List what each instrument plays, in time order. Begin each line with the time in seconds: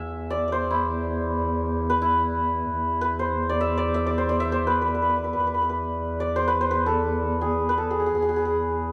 Already playing: santur E5 G#5
0.00 double bass E2
0.30 santur D5
0.48 santur D5
0.52 santur C5
0.70 santur E4
1.90 santur B4
2.02 santur E4
2.72 double bass E2
3.01 santur B4
3.19 santur C5
3.49 santur D5
3.60 santur E5
3.78 santur D5
3.94 santur E5
4.06 santur D5
4.18 santur C5
4.29 santur D5
4.40 santur E5
4.52 santur C5
4.67 santur B4
4.81 santur B4
4.88 santur B4
4.94 santur B4
5.02 santur B4
5.09 santur B4
5.16 santur B4
5.24 santur B4
5.33 santur B4
5.40 santur B4
5.44 double bass E2, santur B4
5.54 santur B4
5.62 santur B4
5.69 santur B4
6.20 santur D5
6.36 santur C5
6.48 santur B4
6.61 santur C5
6.71 santur B4
6.86 santur A4
7.41 santur G#4
7.69 santur B4
7.78 santur A4
7.91 santur G#4
8.00 santur G#4
8.06 santur G#4
8.15 santur G#4
8.21 double bass E2, santur G#4
8.29 santur G#4
8.36 santur G#4
8.45 santur G#4